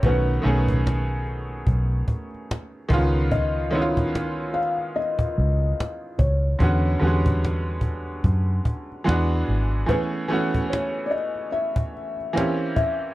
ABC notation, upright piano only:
X:1
M:4/4
L:1/8
Q:"Swing 16ths" 1/4=73
K:C#m
V:1 name="Upright piano"
[D,A,B,CF] [D,A,B,CG]3 z3 [D,G,B,C^E]- | [D,G,B,C^E] [D,G,B,C=E^E]3 z4 | [=D,G,B,CF] [D,=G,^G,B,CF]3 z2 [E,G,B,=DF]2 | [E,A,B,CG] [E,A,B,CF]3 z2 [E,^A,^B,C=G]2 |]